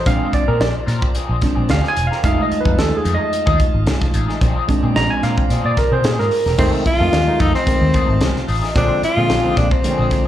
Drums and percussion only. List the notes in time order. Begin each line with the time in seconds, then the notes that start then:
0.06 kick, closed hi-hat
0.33 kick, closed hi-hat
0.61 snare, closed hi-hat
0.88 snare, closed hi-hat
1.02 kick
1.15 closed hi-hat
1.42 kick, snare, closed hi-hat
1.69 snare, closed hi-hat
1.85 snare
1.97 closed hi-hat
2.12 snare
2.24 kick, closed hi-hat
2.52 closed hi-hat
2.65 kick
2.79 snare, closed hi-hat
3.05 closed hi-hat
3.33 closed hi-hat
3.47 kick
3.60 kick, closed hi-hat
3.87 snare, closed hi-hat
4.02 kick, snare
4.14 closed hi-hat
4.29 snare
4.41 kick, closed hi-hat
4.69 kick, closed hi-hat
4.96 snare, closed hi-hat
5.23 snare, closed hi-hat
5.38 kick
5.50 closed hi-hat
5.77 kick, snare, closed hi-hat
6.04 snare, closed hi-hat
6.20 snare
6.31 open hi-hat
6.46 snare
6.58 kick, crash
6.86 kick, closed hi-hat
7.13 snare, closed hi-hat
7.40 kick, closed hi-hat
7.54 snare
7.67 kick, closed hi-hat
7.94 kick, closed hi-hat
8.21 snare, closed hi-hat
8.36 snare
8.48 open hi-hat
8.64 snare
8.76 kick, closed hi-hat
9.03 closed hi-hat
9.30 snare, closed hi-hat
9.57 kick, snare, closed hi-hat
9.71 kick
9.84 closed hi-hat
10.11 kick, snare, closed hi-hat